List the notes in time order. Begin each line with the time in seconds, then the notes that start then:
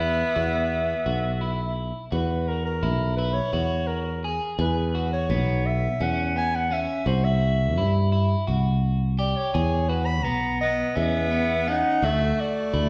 Already playing: E2 B3 E5
0.00 E4
0.36 E2 F#4
1.06 B1 F#4
1.41 E4
2.12 E2 F#4 B4
2.48 A#4
2.65 A#4
2.83 B1 E4
3.16 E4 B4
3.34 C#5
3.53 E2 F#4
3.87 A#4
4.24 G#4
4.59 E2 G#4 B4
4.95 F#4
5.13 C#5
5.30 B1 B3
5.66 E5
6.00 E2 C#4 F#5
6.36 B3 G#5
6.55 F#5
6.71 C#4 E5
7.06 C2 F#4 C5
7.24 E5
7.77 G2 E4
8.12 E4
8.47 C2 F#4
9.19 G4 D5
9.36 C#5
9.54 E2 G#4
9.89 F#4 B4
10.06 B5
10.23 B1 B3 A#5
10.61 B3 D#5
10.95 E2 B3 C#4 E5
11.31 B3
11.67 C#4 D#4 F#5
12.02 D2 A3 F#4 E5
12.40 A3 D5
12.74 D2 E4